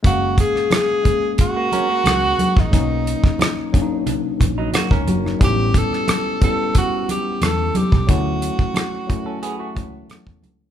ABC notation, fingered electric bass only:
X:1
M:4/4
L:1/16
Q:1/4=90
K:Blyd
V:1 name="Fingered electric bass" clef=bass
F,,,3 z8 z C,,2 z A,,, | B,,,3 z6 z A,,,2 z C,, F,,,2 | =A,,,3 z8 z =E,,2 z B,,, | =D,,3 z6 z C,,2 z =E,, C,,2 |]